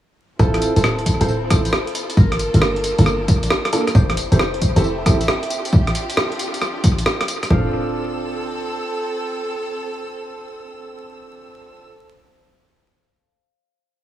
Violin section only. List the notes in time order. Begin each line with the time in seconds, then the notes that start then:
0.39 C4 E4 F4 A4
2.17 A#3 D4
3.95 A3 C4 E4 G4
5.50 D4 F4
7.50 C4 A4 E6